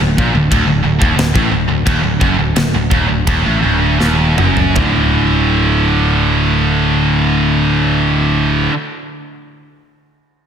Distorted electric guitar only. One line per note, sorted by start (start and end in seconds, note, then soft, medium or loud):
0.01 0.18 D2 medium
0.18 0.34 A#2 medium
0.35 0.50 D2 medium
0.51 0.66 D2 medium
0.67 0.82 D2 medium
0.84 1.00 D2 medium
1.00 1.16 D#2 medium
1.17 1.34 D2 medium
1.34 1.51 A2 medium
1.51 1.67 D2 medium
1.68 1.85 D2 medium
1.86 2.03 D#2 loud
2.03 2.20 D2 medium
2.20 2.37 F#2 loud
2.39 2.55 D2 medium
2.56 2.73 D2 medium
2.75 2.90 D2 medium
2.90 3.08 D#2 medium
3.09 3.26 D2 medium
3.27 3.44 D#2 medium
3.45 3.61 A2 medium
3.62 3.99 D2 medium
3.99 4.37 D#2 medium
4.37 4.74 F#2 medium
4.75 8.70 D2 medium
4.75 8.71 A2 medium
4.75 8.73 D3 medium